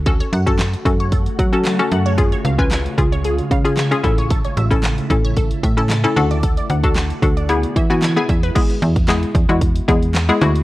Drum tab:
CC |----------------|----------------|----------------|----------------|
HH |xxxxxxxxxxxxxxxx|xxxxxxxxxxxxxxxx|xxxxxxxxxxxxxxxx|xxxxxxxxxxxxxxxx|
CP |----x-------x---|----x-------x---|----x-------x---|----x-------x---|
SD |----o-------o---|----o-------o---|----o-------o---|----o-------o---|
BD |o--o--o-o-o-----|o--o--o---o---o-|o--o--o-o-o-----|o--o--o---o---o-|

CC |x---------------|
HH |xxxxxxxxxxxxxxxx|
CP |----x-------x---|
SD |----o-------o---|
BD |o--o--o-o-o-----|